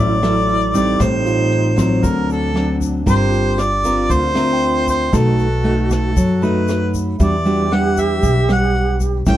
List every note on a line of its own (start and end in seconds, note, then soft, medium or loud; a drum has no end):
0.00 0.96 A1 medium
0.00 0.97 A2 soft
0.00 0.19 F#3 medium
0.00 0.19 C#4 medium
0.00 0.19 E4 medium
0.00 1.01 E4 medium
0.00 1.03 E4 medium
0.00 0.76 D5 loud
0.23 0.70 F#3 medium
0.23 0.71 E4 medium
0.23 0.84 A4 soft
0.23 cross-stick medium
0.23 closed hi-hat soft
0.23 shaker soft
0.49 closed hi-hat soft
0.74 1.73 G3 medium
0.74 1.73 C4 medium
0.74 1.74 D#4 medium
0.74 1.04 D5 medium
0.74 kick soft
0.74 closed hi-hat soft
0.74 shaker medium
0.99 1.99 A1 loud
0.99 2.01 A2 medium
0.99 2.05 D#4 medium
0.99 1.78 C5 medium
0.99 kick medium
0.99 cross-stick medium
0.99 closed hi-hat soft
0.99 shaker medium
1.26 1.87 F4 medium
1.26 closed hi-hat soft
1.26 shaker soft
1.52 closed hi-hat soft
1.76 2.50 F#3 medium
1.76 2.51 C4 medium
1.76 2.07 C5 medium
1.76 kick soft
1.76 cross-stick medium
1.76 closed hi-hat soft
1.76 shaker medium
2.03 3.03 D2 medium
2.03 3.04 D3 medium
2.03 3.09 D4 loud
2.03 2.30 A#4 medium
2.03 kick soft
2.03 closed hi-hat soft
2.03 shaker medium
2.30 2.79 A4 medium
2.30 closed hi-hat soft
2.30 shaker soft
2.54 3.02 F#3 medium
2.54 3.02 C4 medium
2.54 cross-stick medium
2.54 closed hi-hat soft
2.81 kick soft
2.81 closed hi-hat soft
2.81 shaker medium
3.06 4.06 G1 loud
3.06 4.07 G3 medium
3.06 3.58 C4 medium
3.06 3.68 D4 soft
3.06 3.58 F4 medium
3.06 3.60 G4 loud
3.06 3.58 A#4 medium
3.06 3.63 C5 loud
3.06 kick medium
3.06 closed hi-hat soft
3.06 shaker medium
3.32 3.93 F4 soft
3.32 closed hi-hat soft
3.32 shaker soft
3.58 4.86 F4 medium
3.58 4.14 D5 loud
3.58 cross-stick medium
3.58 closed hi-hat soft
3.58 shaker soft
3.84 4.32 C4 medium
3.84 4.32 F4 medium
3.84 4.32 A#4 medium
3.84 kick soft
3.84 closed hi-hat soft
3.84 shaker medium
4.10 5.09 D2 medium
4.10 5.11 D3 medium
4.10 4.88 C5 loud
4.10 kick medium
4.10 closed hi-hat soft
4.10 shaker medium
4.34 5.08 C4 medium
4.34 5.09 F4 medium
4.34 5.09 A#4 medium
4.34 4.97 E5 soft
4.34 cross-stick medium
4.34 closed hi-hat soft
4.34 shaker soft
4.53 5.12 G5 soft
4.62 closed hi-hat soft
4.87 5.15 C5 loud
4.87 kick soft
4.87 closed hi-hat soft
4.87 shaker medium
5.12 6.12 B1 loud
5.12 6.13 B2 medium
5.12 5.46 A3 medium
5.12 5.46 D#4 medium
5.12 5.46 F#4 medium
5.12 6.12 F#4 loud
5.12 5.91 A4 medium
5.12 kick medium
5.12 cross-stick medium
5.12 closed hi-hat soft
5.12 shaker medium
5.39 closed hi-hat soft
5.39 shaker soft
5.64 6.16 A3 medium
5.64 6.16 D#4 medium
5.64 6.16 F#4 medium
5.64 closed hi-hat soft
5.91 6.45 A4 medium
5.91 kick soft
5.91 cross-stick medium
5.91 shaker medium
6.16 7.16 F#2 medium
6.16 7.17 F#3 medium
6.16 6.90 F#4 loud
6.16 kick soft
6.16 closed hi-hat soft
6.16 shaker medium
6.42 7.15 A3 medium
6.42 7.16 D#4 medium
6.42 7.16 F#4 medium
6.42 6.94 B4 medium
6.42 7.04 B5 soft
6.42 closed hi-hat soft
6.42 shaker soft
6.68 cross-stick medium
6.68 closed hi-hat soft
6.68 shaker soft
6.94 kick soft
6.94 closed hi-hat soft
6.94 shaker medium
7.19 8.19 E2 loud
7.19 8.20 E3 medium
7.19 7.35 G3 medium
7.19 7.35 D4 medium
7.19 7.35 F#4 medium
7.19 9.22 G4 loud
7.19 7.75 D5 medium
7.19 kick medium
7.19 closed hi-hat soft
7.19 shaker medium
7.45 7.67 G3 medium
7.45 7.67 D4 medium
7.45 7.67 F#4 medium
7.45 closed hi-hat soft
7.45 shaker soft
7.71 8.45 G3 medium
7.71 8.45 D4 medium
7.71 8.01 F#5 loud
7.71 cross-stick medium
7.71 closed hi-hat soft
7.97 8.50 E5 medium
7.97 kick soft
7.97 closed hi-hat soft
7.97 shaker medium
8.23 9.22 B1 medium
8.23 9.23 B2 soft
8.23 kick medium
8.23 closed hi-hat soft
8.23 shaker medium
8.48 9.22 G3 soft
8.48 9.22 D4 medium
8.48 8.99 F#5 medium
8.48 cross-stick medium
8.48 closed hi-hat soft
8.48 shaker soft
8.75 closed hi-hat soft
9.00 kick soft
9.00 closed hi-hat soft
9.00 shaker medium
9.26 9.37 A1 loud
9.26 9.37 A2 medium
9.26 9.37 G3 medium
9.26 9.37 C#4 medium
9.26 9.37 E4 medium
9.26 9.37 G5 loud
9.26 kick medium
9.26 cross-stick medium
9.26 closed hi-hat soft
9.26 shaker medium